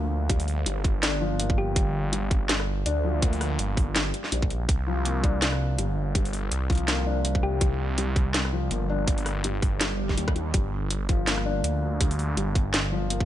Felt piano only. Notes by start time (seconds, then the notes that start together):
Already playing: F3 G3 A#3 D4
0.30 G3
0.66 G3
1.03 D4
1.21 F3
1.39 A#3
2.13 G3
2.49 G3
2.86 D4
3.04 F3
3.22 A#3
3.95 G3
4.32 G3
4.87 F3
5.05 A#3
5.24 D4
5.78 G3
6.15 G3
6.70 F3
6.88 A#3
7.06 D4
7.61 G3
7.98 G3
8.53 F3
8.71 A#3
8.89 D4
9.44 G3
9.81 G3
10.18 G3
10.36 G3
10.54 G3
11.09 F3
11.28 A#3
11.46 D4
12.00 G3
12.37 G3
12.92 F3
13.10 A#3